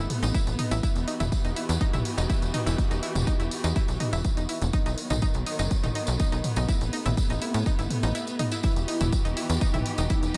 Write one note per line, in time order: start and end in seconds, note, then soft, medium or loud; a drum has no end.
0.00 0.81 C3 medium
0.00 0.81 A3 medium
0.00 4.70 B3 medium
0.10 mid tom medium
0.10 open hi-hat loud
0.23 0.32 A1 medium
0.23 0.29 D#4 medium
0.23 closed hi-hat soft
0.23 tambourine medium
0.34 0.39 E4 medium
0.34 kick loud
0.34 closed hi-hat medium
0.34 tambourine medium
0.47 0.57 A1 medium
0.47 closed hi-hat soft
0.47 tambourine soft
0.59 0.66 D#4 medium
0.59 mid tom medium
0.59 open hi-hat loud
0.71 0.81 A1 medium
0.71 0.75 E4 medium
0.71 closed hi-hat soft
0.71 tambourine medium
0.83 4.70 E3 medium
0.83 0.87 E4 medium
0.83 4.70 F#4 medium
0.83 4.70 G4 medium
0.83 kick loud
0.83 closed hi-hat medium
0.83 tambourine medium
0.95 1.05 E1 medium
0.95 closed hi-hat soft
0.95 tambourine soft
1.08 1.15 D#4 medium
1.08 open hi-hat loud
1.20 1.30 E1 medium
1.20 1.24 E4 medium
1.20 closed hi-hat soft
1.20 mid tom loud
1.20 tambourine medium
1.32 kick loud
1.32 closed hi-hat medium
1.32 tambourine medium
1.45 1.54 E1 medium
1.45 1.51 D#4 medium
1.45 closed hi-hat soft
1.45 tambourine soft
1.56 1.61 E4 medium
1.56 open hi-hat loud
1.69 1.79 E2 medium
1.69 closed hi-hat soft
1.69 tambourine medium
1.81 1.88 D#4 medium
1.81 kick loud
1.81 closed hi-hat medium
1.81 tambourine medium
1.93 2.03 B1 medium
1.93 1.97 E4 medium
1.93 closed hi-hat soft
1.93 mid tom medium
1.93 tambourine soft
2.05 open hi-hat loud
2.18 2.27 E1 medium
2.18 2.24 D#4 medium
2.18 closed hi-hat soft
2.18 tambourine medium
2.29 2.34 E4 medium
2.29 kick loud
2.29 closed hi-hat medium
2.29 tambourine medium
2.42 2.52 E1 medium
2.42 closed hi-hat soft
2.42 tambourine soft
2.54 2.61 D#4 medium
2.54 mid tom medium
2.54 open hi-hat loud
2.66 2.76 E1 medium
2.66 2.70 E4 medium
2.66 closed hi-hat soft
2.66 tambourine medium
2.78 kick loud
2.78 closed hi-hat medium
2.78 tambourine medium
2.91 3.00 E1 medium
2.91 2.98 D#4 medium
2.91 closed hi-hat soft
2.91 tambourine soft
3.03 3.07 E4 medium
3.03 open hi-hat loud
3.15 3.25 E1 medium
3.15 closed hi-hat soft
3.15 mid tom loud
3.15 tambourine medium
3.27 3.34 D#4 medium
3.27 kick loud
3.27 closed hi-hat medium
3.27 tambourine medium
3.40 3.49 E1 medium
3.40 3.44 E4 medium
3.40 closed hi-hat soft
3.40 tambourine soft
3.51 open hi-hat loud
3.64 3.74 E2 medium
3.64 3.71 D#4 medium
3.64 closed hi-hat soft
3.64 tambourine medium
3.76 3.80 E4 medium
3.76 kick loud
3.76 closed hi-hat medium
3.76 tambourine medium
3.88 3.98 B1 medium
3.88 closed hi-hat soft
3.88 tambourine soft
4.00 4.07 D#4 medium
4.00 mid tom medium
4.00 open hi-hat loud
4.13 4.22 E1 medium
4.13 4.17 E4 medium
4.13 closed hi-hat soft
4.13 tambourine medium
4.24 kick loud
4.24 closed hi-hat medium
4.24 tambourine medium
4.37 4.47 E1 medium
4.37 4.44 D#4 medium
4.37 closed hi-hat soft
4.37 tambourine soft
4.49 4.53 E4 medium
4.49 open hi-hat loud
4.62 4.71 E1 medium
4.62 closed hi-hat soft
4.62 tambourine medium
4.73 6.67 D#3 medium
4.73 6.67 F#3 medium
4.73 10.37 B3 medium
4.73 4.80 D#4 medium
4.73 kick loud
4.73 closed hi-hat medium
4.73 tambourine medium
4.86 4.96 B1 medium
4.86 4.90 D#4 medium
4.86 closed hi-hat soft
4.86 tambourine soft
4.98 open hi-hat loud
5.10 5.20 B1 medium
5.10 5.17 D#4 medium
5.10 closed hi-hat soft
5.10 mid tom loud
5.10 tambourine medium
5.22 5.26 D#4 medium
5.22 kick loud
5.22 closed hi-hat medium
5.22 tambourine medium
5.34 5.44 B1 medium
5.34 closed hi-hat soft
5.34 tambourine soft
5.46 5.54 D#4 medium
5.46 open hi-hat loud
5.59 5.69 F#1 medium
5.59 5.63 D#4 medium
5.59 closed hi-hat soft
5.59 tambourine medium
5.71 kick loud
5.71 closed hi-hat medium
5.71 tambourine medium
5.84 5.93 A1 medium
5.84 5.90 D#4 medium
5.84 closed hi-hat soft
5.84 mid tom loud
5.84 tambourine soft
5.95 6.00 D#4 medium
5.95 open hi-hat loud
6.07 6.17 B1 medium
6.07 closed hi-hat soft
6.07 tambourine medium
6.20 6.27 D#4 medium
6.20 kick loud
6.20 closed hi-hat medium
6.20 tambourine medium
6.32 6.42 B1 medium
6.32 6.36 D#4 medium
6.32 closed hi-hat soft
6.32 tambourine soft
6.44 mid tom medium
6.44 open hi-hat loud
6.56 6.66 B1 medium
6.56 6.63 D#4 medium
6.56 closed hi-hat soft
6.56 tambourine medium
6.69 8.62 C3 medium
6.69 8.62 A3 medium
6.69 6.73 E4 medium
6.69 kick loud
6.69 closed hi-hat medium
6.69 tambourine medium
6.81 6.91 A1 medium
6.81 closed hi-hat soft
6.81 tambourine soft
6.93 7.00 D#4 medium
6.93 open hi-hat loud
7.06 7.15 A1 medium
7.06 7.10 E4 medium
7.06 closed hi-hat soft
7.06 mid tom loud
7.06 tambourine medium
7.17 kick loud
7.17 closed hi-hat medium
7.17 tambourine medium
7.30 7.39 A1 medium
7.30 7.37 D#4 medium
7.30 closed hi-hat soft
7.30 tambourine soft
7.42 7.46 E4 medium
7.42 open hi-hat loud
7.54 7.64 A2 medium
7.54 closed hi-hat soft
7.54 tambourine medium
7.66 7.73 D#4 medium
7.66 kick loud
7.66 closed hi-hat medium
7.66 tambourine medium
7.79 7.88 G1 medium
7.79 7.83 E4 medium
7.79 closed hi-hat soft
7.79 tambourine soft
7.91 mid tom medium
7.91 open hi-hat loud
8.03 8.13 A1 medium
8.03 8.10 D#4 medium
8.03 closed hi-hat soft
8.03 tambourine medium
8.15 8.19 E4 medium
8.15 closed hi-hat medium
8.15 tambourine medium
8.27 closed hi-hat soft
8.27 tambourine soft
8.39 8.46 D#4 medium
8.39 mid tom medium
8.39 open hi-hat loud
8.52 8.56 E4 medium
8.52 closed hi-hat soft
8.52 tambourine medium
8.63 10.37 E3 medium
8.63 8.68 E4 medium
8.63 9.27 E4 loud
8.63 10.37 F#4 medium
8.63 10.37 G4 medium
8.63 kick loud
8.63 closed hi-hat medium
8.63 tambourine medium
8.76 8.86 E1 medium
8.76 closed hi-hat soft
8.76 tambourine soft
8.88 8.95 D#4 medium
8.88 open hi-hat loud
9.01 9.10 E1 medium
9.01 9.05 E4 medium
9.01 closed hi-hat soft
9.01 mid tom medium
9.01 tambourine medium
9.12 kick loud
9.12 closed hi-hat medium
9.12 tambourine medium
9.25 9.35 E1 medium
9.25 9.32 D#4 medium
9.25 closed hi-hat soft
9.25 tambourine soft
9.37 10.37 D#4 loud
9.37 9.41 E4 medium
9.37 open hi-hat loud
9.49 9.59 E2 medium
9.49 closed hi-hat soft
9.49 tambourine medium
9.61 9.68 D#4 medium
9.61 kick loud
9.61 closed hi-hat medium
9.61 tambourine medium
9.74 9.83 B1 medium
9.74 9.78 E4 medium
9.74 closed hi-hat soft
9.74 mid tom medium
9.74 tambourine soft
9.86 open hi-hat loud
9.98 10.08 E1 medium
9.98 10.05 D#4 medium
9.98 closed hi-hat soft
9.98 tambourine medium
10.10 10.14 E4 medium
10.10 kick loud
10.10 closed hi-hat medium
10.10 tambourine medium
10.23 10.32 E1 medium
10.23 closed hi-hat soft
10.23 tambourine soft